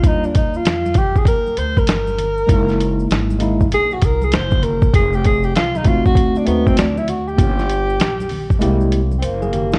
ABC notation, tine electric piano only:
X:1
M:4/4
L:1/16
Q:"Swing 16ths" 1/4=98
K:Ebmix
V:1 name="Tine electric piano"
[G,B,=DF]2 z12 z2 | [A,B,E_F]6 [A,B,EF]2 z8 | z6 [=A,CE_G]4 [A,CE^F]2 z4 | [B,DFG]2 z6 [A,B,=EG]2 z2 c A G E |]